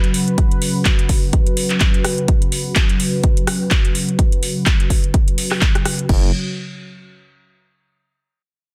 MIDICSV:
0, 0, Header, 1, 4, 480
1, 0, Start_track
1, 0, Tempo, 476190
1, 382, Time_signature, 4, 2, 24, 8
1, 8811, End_track
2, 0, Start_track
2, 0, Title_t, "Analog synth pad"
2, 0, Program_c, 0, 89
2, 0, Note_on_c, 0, 49, 84
2, 0, Note_on_c, 0, 54, 74
2, 0, Note_on_c, 0, 66, 76
2, 0, Note_on_c, 0, 71, 87
2, 6101, Note_off_c, 0, 54, 0
2, 6102, Note_off_c, 0, 49, 0
2, 6102, Note_off_c, 0, 66, 0
2, 6102, Note_off_c, 0, 71, 0
2, 6142, Note_on_c, 0, 54, 67
2, 6143, Note_on_c, 0, 49, 74
2, 6143, Note_on_c, 0, 66, 66
2, 6143, Note_on_c, 0, 73, 83
2, 6365, Note_off_c, 0, 54, 0
2, 6366, Note_off_c, 0, 49, 0
2, 6366, Note_off_c, 0, 66, 0
2, 6366, Note_off_c, 0, 73, 0
2, 8811, End_track
3, 0, Start_track
3, 0, Title_t, "FM bass"
3, 0, Program_c, 1, 39
3, 6141, Note_on_c, 1, 30, 97
3, 6365, Note_off_c, 1, 30, 0
3, 8811, End_track
4, 0, Start_track
4, 0, Title_t, "Drums"
4, 38, Note_on_c, 9, 42, 50
4, 139, Note_off_c, 9, 42, 0
4, 142, Note_on_c, 9, 46, 96
4, 243, Note_off_c, 9, 46, 0
4, 279, Note_on_c, 9, 42, 34
4, 379, Note_off_c, 9, 42, 0
4, 382, Note_on_c, 9, 36, 116
4, 382, Note_on_c, 9, 42, 79
4, 483, Note_off_c, 9, 36, 0
4, 483, Note_off_c, 9, 42, 0
4, 519, Note_on_c, 9, 42, 54
4, 619, Note_off_c, 9, 42, 0
4, 622, Note_on_c, 9, 46, 102
4, 723, Note_off_c, 9, 46, 0
4, 858, Note_on_c, 9, 39, 118
4, 862, Note_on_c, 9, 36, 114
4, 862, Note_on_c, 9, 42, 81
4, 959, Note_off_c, 9, 39, 0
4, 962, Note_off_c, 9, 42, 0
4, 963, Note_off_c, 9, 36, 0
4, 998, Note_on_c, 9, 42, 52
4, 1099, Note_off_c, 9, 42, 0
4, 1101, Note_on_c, 9, 46, 93
4, 1102, Note_on_c, 9, 36, 57
4, 1201, Note_off_c, 9, 46, 0
4, 1203, Note_off_c, 9, 36, 0
4, 1341, Note_on_c, 9, 42, 81
4, 1342, Note_on_c, 9, 36, 109
4, 1442, Note_off_c, 9, 42, 0
4, 1443, Note_off_c, 9, 36, 0
4, 1477, Note_on_c, 9, 42, 55
4, 1578, Note_off_c, 9, 42, 0
4, 1581, Note_on_c, 9, 46, 105
4, 1682, Note_off_c, 9, 46, 0
4, 1714, Note_on_c, 9, 39, 35
4, 1717, Note_on_c, 9, 42, 38
4, 1815, Note_off_c, 9, 39, 0
4, 1817, Note_on_c, 9, 39, 113
4, 1818, Note_off_c, 9, 42, 0
4, 1820, Note_on_c, 9, 42, 82
4, 1822, Note_on_c, 9, 36, 110
4, 1918, Note_off_c, 9, 39, 0
4, 1921, Note_off_c, 9, 42, 0
4, 1923, Note_off_c, 9, 36, 0
4, 1957, Note_on_c, 9, 42, 52
4, 2058, Note_off_c, 9, 42, 0
4, 2061, Note_on_c, 9, 37, 83
4, 2061, Note_on_c, 9, 46, 93
4, 2162, Note_off_c, 9, 37, 0
4, 2162, Note_off_c, 9, 46, 0
4, 2197, Note_on_c, 9, 42, 36
4, 2298, Note_off_c, 9, 42, 0
4, 2301, Note_on_c, 9, 42, 84
4, 2302, Note_on_c, 9, 36, 116
4, 2402, Note_off_c, 9, 42, 0
4, 2403, Note_off_c, 9, 36, 0
4, 2438, Note_on_c, 9, 42, 55
4, 2538, Note_off_c, 9, 42, 0
4, 2541, Note_on_c, 9, 46, 102
4, 2642, Note_off_c, 9, 46, 0
4, 2778, Note_on_c, 9, 39, 121
4, 2781, Note_on_c, 9, 42, 83
4, 2782, Note_on_c, 9, 36, 110
4, 2878, Note_off_c, 9, 39, 0
4, 2882, Note_off_c, 9, 42, 0
4, 2883, Note_off_c, 9, 36, 0
4, 2918, Note_on_c, 9, 42, 54
4, 3019, Note_off_c, 9, 42, 0
4, 3021, Note_on_c, 9, 46, 86
4, 3122, Note_off_c, 9, 46, 0
4, 3261, Note_on_c, 9, 42, 83
4, 3262, Note_on_c, 9, 36, 106
4, 3362, Note_off_c, 9, 42, 0
4, 3363, Note_off_c, 9, 36, 0
4, 3398, Note_on_c, 9, 42, 55
4, 3499, Note_off_c, 9, 42, 0
4, 3501, Note_on_c, 9, 37, 89
4, 3501, Note_on_c, 9, 46, 103
4, 3602, Note_off_c, 9, 37, 0
4, 3602, Note_off_c, 9, 46, 0
4, 3738, Note_on_c, 9, 39, 115
4, 3741, Note_on_c, 9, 42, 82
4, 3742, Note_on_c, 9, 36, 116
4, 3838, Note_off_c, 9, 39, 0
4, 3842, Note_off_c, 9, 36, 0
4, 3842, Note_off_c, 9, 42, 0
4, 3878, Note_on_c, 9, 42, 53
4, 3979, Note_off_c, 9, 42, 0
4, 3982, Note_on_c, 9, 46, 90
4, 4082, Note_off_c, 9, 46, 0
4, 4118, Note_on_c, 9, 42, 38
4, 4219, Note_off_c, 9, 42, 0
4, 4221, Note_on_c, 9, 36, 115
4, 4222, Note_on_c, 9, 42, 85
4, 4322, Note_off_c, 9, 36, 0
4, 4323, Note_off_c, 9, 42, 0
4, 4358, Note_on_c, 9, 42, 56
4, 4459, Note_off_c, 9, 42, 0
4, 4462, Note_on_c, 9, 46, 104
4, 4563, Note_off_c, 9, 46, 0
4, 4698, Note_on_c, 9, 39, 126
4, 4702, Note_on_c, 9, 36, 111
4, 4702, Note_on_c, 9, 42, 85
4, 4799, Note_off_c, 9, 39, 0
4, 4802, Note_off_c, 9, 36, 0
4, 4802, Note_off_c, 9, 42, 0
4, 4838, Note_on_c, 9, 42, 55
4, 4939, Note_off_c, 9, 42, 0
4, 4942, Note_on_c, 9, 36, 57
4, 4942, Note_on_c, 9, 46, 89
4, 5042, Note_off_c, 9, 36, 0
4, 5043, Note_off_c, 9, 46, 0
4, 5079, Note_on_c, 9, 42, 40
4, 5180, Note_off_c, 9, 42, 0
4, 5182, Note_on_c, 9, 36, 115
4, 5182, Note_on_c, 9, 42, 87
4, 5282, Note_off_c, 9, 36, 0
4, 5283, Note_off_c, 9, 42, 0
4, 5319, Note_on_c, 9, 42, 57
4, 5420, Note_off_c, 9, 42, 0
4, 5422, Note_on_c, 9, 46, 105
4, 5523, Note_off_c, 9, 46, 0
4, 5555, Note_on_c, 9, 39, 38
4, 5559, Note_on_c, 9, 37, 82
4, 5656, Note_off_c, 9, 39, 0
4, 5658, Note_on_c, 9, 39, 123
4, 5660, Note_off_c, 9, 37, 0
4, 5662, Note_on_c, 9, 36, 115
4, 5662, Note_on_c, 9, 42, 85
4, 5759, Note_off_c, 9, 39, 0
4, 5762, Note_off_c, 9, 36, 0
4, 5763, Note_off_c, 9, 42, 0
4, 5799, Note_on_c, 9, 37, 82
4, 5799, Note_on_c, 9, 42, 54
4, 5900, Note_off_c, 9, 37, 0
4, 5900, Note_off_c, 9, 42, 0
4, 5902, Note_on_c, 9, 37, 79
4, 5902, Note_on_c, 9, 46, 93
4, 6002, Note_off_c, 9, 37, 0
4, 6002, Note_off_c, 9, 46, 0
4, 6039, Note_on_c, 9, 42, 39
4, 6140, Note_off_c, 9, 42, 0
4, 6142, Note_on_c, 9, 36, 115
4, 6142, Note_on_c, 9, 49, 89
4, 6243, Note_off_c, 9, 36, 0
4, 6243, Note_off_c, 9, 49, 0
4, 8811, End_track
0, 0, End_of_file